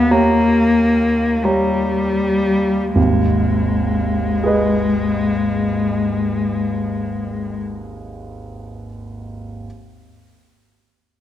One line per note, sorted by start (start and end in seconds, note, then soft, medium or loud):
0.00 2.95 D#2 soft
0.00 0.14 B3 medium
0.11 1.46 A#3 soft
0.11 1.40 G4 soft
0.11 1.40 C#5 soft
0.11 1.40 A#5 soft
1.44 2.95 G3 soft
1.44 2.92 G4 soft
1.44 2.93 C#5 soft
1.44 2.93 A#5 soft
2.95 7.57 G#1 soft
2.95 7.57 D#2 soft
2.95 7.57 G#3 soft
4.44 8.86 G#4 soft
4.44 8.87 B4 soft
4.44 8.88 D#5 soft